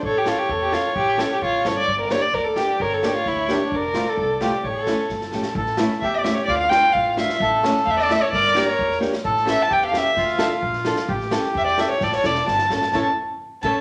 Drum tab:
CC |--------|--------|--------|--------|
SD |--o---o-|--o---o-|--o-o-o-|--o-o-o-|
BD |o---o---|o---o---|o---o---|o---o---|

CC |--------|--------|--------|--------|
SD |--o---oo|--o-oooo|-ooo--o-|o-o---oo|
BD |o---o---|o---o---|o---o---|o---o---|

CC |--------|--------|--------|--------|
SD |--oo-oo-|oooo-ooo|-ooo--o-|ooo--ooo|
BD |o---o---|o---o---|o---o---|o---o---|

CC |--------|--------|------x-|
SD |-ooo-oo-|oooooooo|o-------|
BD |o---o---|o---o---|o-----o-|